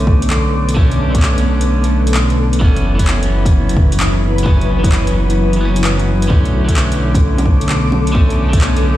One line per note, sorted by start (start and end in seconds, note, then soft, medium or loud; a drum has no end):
0.00 2.59 B1 medium
0.00 0.73 D3 medium
0.00 0.75 A3 medium
0.00 2.57 B3 medium
0.00 0.77 C#4 medium
0.00 2.58 A4 medium
0.00 2.58 D6 medium
0.07 kick loud
0.22 closed hi-hat medium
0.30 clap loud
0.69 closed hi-hat medium
0.75 1.09 D3 medium
0.75 1.11 A3 medium
0.75 1.12 C#4 medium
0.75 kick loud
0.91 closed hi-hat soft
1.10 2.57 D3 medium
1.15 2.59 A3 medium
1.15 2.61 C#4 medium
1.15 kick loud
1.15 closed hi-hat medium
1.22 clap loud
1.38 closed hi-hat soft
1.61 closed hi-hat medium
1.84 closed hi-hat soft
2.07 closed hi-hat medium
2.14 clap loud
2.30 closed hi-hat soft
2.53 closed hi-hat medium
2.60 6.29 F#1 medium
2.60 2.94 E3 medium
2.60 6.27 F#3 medium
2.60 2.96 B3 medium
2.60 6.27 E4 medium
2.60 6.27 B4 medium
2.60 kick loud
2.64 2.97 C#4 medium
2.76 closed hi-hat soft
2.95 4.42 E3 medium
2.95 4.44 B3 medium
2.99 4.46 C#4 medium
2.99 kick medium
2.99 closed hi-hat medium
3.07 clap loud
3.23 closed hi-hat soft
3.45 kick loud
3.45 closed hi-hat medium
3.69 closed hi-hat soft
3.77 kick loud
3.92 closed hi-hat medium
4.00 clap loud
4.38 closed hi-hat medium
4.44 4.78 E3 medium
4.44 4.80 B3 medium
4.44 4.81 C#4 medium
4.44 kick loud
4.61 closed hi-hat soft
4.79 5.55 E3 medium
4.83 5.59 B3 medium
4.83 5.61 C#4 medium
4.83 kick loud
4.83 closed hi-hat medium
4.92 clap loud
5.07 closed hi-hat soft
5.30 closed hi-hat medium
5.53 6.26 E3 medium
5.53 closed hi-hat soft
5.60 6.28 B3 medium
5.65 6.30 C#4 medium
5.76 closed hi-hat medium
5.84 clap loud
5.99 closed hi-hat soft
6.22 closed hi-hat medium
6.28 8.97 B1 medium
6.28 6.63 D3 medium
6.28 6.65 A3 medium
6.28 8.97 B3 medium
6.28 6.66 C#4 medium
6.28 8.97 A4 medium
6.28 8.97 D6 medium
6.28 kick loud
6.45 closed hi-hat soft
6.64 8.11 D3 medium
6.64 8.13 A3 medium
6.64 kick medium
6.69 8.15 C#4 medium
6.69 closed hi-hat medium
6.76 clap medium
6.92 closed hi-hat soft
7.14 kick loud
7.14 closed hi-hat medium
7.14 low bongo soft
7.38 closed hi-hat soft
7.38 low bongo medium
7.46 kick loud
7.61 closed hi-hat soft
7.69 clap loud
7.92 low bongo medium
8.07 closed hi-hat soft
8.12 8.48 D3 medium
8.12 8.49 A3 medium
8.12 8.50 C#4 medium
8.12 kick loud
8.30 closed hi-hat soft
8.49 8.97 D3 medium
8.49 8.97 A3 medium
8.53 8.97 C#4 medium
8.53 kick loud
8.53 closed hi-hat medium
8.61 clap loud
8.77 closed hi-hat soft